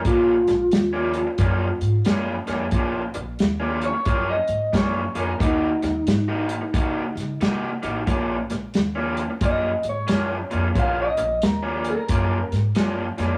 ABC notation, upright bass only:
X:1
M:4/4
L:1/8
Q:"Swing" 1/4=90
K:Bbm
V:1 name="Upright bass" clef=bass
B,,, B,,, E,,2 G,, A,, G,, F,, | B,,, B,,, E,,2 G,, A,, G,, F,, | E,, E,, A,,2 C, D, C, =A,,, | B,,, B,,, E,,2 G,, A,, G,, F,, |
B,,, B,,, E,,2 G,, A,, G,, F,, |]